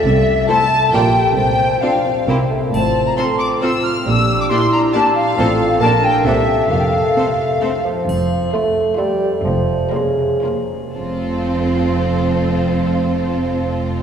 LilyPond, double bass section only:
\new Staff \with { instrumentName = "Double bass section" } { \clef bass \time 3/4 \key f \major \tempo 4 = 132 c,4 r4 bes,,4 | c,4 r4 c,4 | a,,4 r2 | bes,,4 r2 |
a,,4 bes,,4 c,4 | f,,4 r2 | f,,4 r2 | f,,4 r2 |
f,,2.~ | f,,2. | }